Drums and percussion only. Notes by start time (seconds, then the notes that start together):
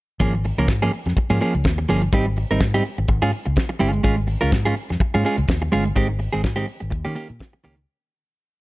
0.20 kick, closed hi-hat
0.44 open hi-hat
0.59 closed hi-hat
0.68 kick, snare, closed hi-hat
0.93 open hi-hat
1.06 snare, closed hi-hat
1.17 kick, closed hi-hat
1.41 open hi-hat
1.54 closed hi-hat
1.64 kick, snare, closed hi-hat
1.89 open hi-hat
2.02 closed hi-hat
2.12 kick, closed hi-hat
2.36 open hi-hat
2.51 closed hi-hat
2.60 kick, snare, closed hi-hat
2.85 open hi-hat
2.97 closed hi-hat
3.08 kick, closed hi-hat
3.32 open hi-hat
3.45 closed hi-hat
3.56 kick, snare, closed hi-hat
3.80 open hi-hat
3.93 closed hi-hat
4.04 kick, closed hi-hat
4.28 open hi-hat
4.42 closed hi-hat
4.52 kick, snare, closed hi-hat
4.77 open hi-hat
4.89 snare, closed hi-hat
5.00 kick, closed hi-hat
5.24 open hi-hat
5.38 closed hi-hat
5.48 kick, snare, closed hi-hat
5.72 open hi-hat
5.85 closed hi-hat
5.96 kick, closed hi-hat
6.19 open hi-hat
6.34 closed hi-hat
6.44 kick, snare, closed hi-hat
6.69 open hi-hat
6.81 closed hi-hat
6.92 kick, closed hi-hat
7.16 open hi-hat
7.30 closed hi-hat
7.39 kick, snare, closed hi-hat
7.64 open hi-hat
7.77 closed hi-hat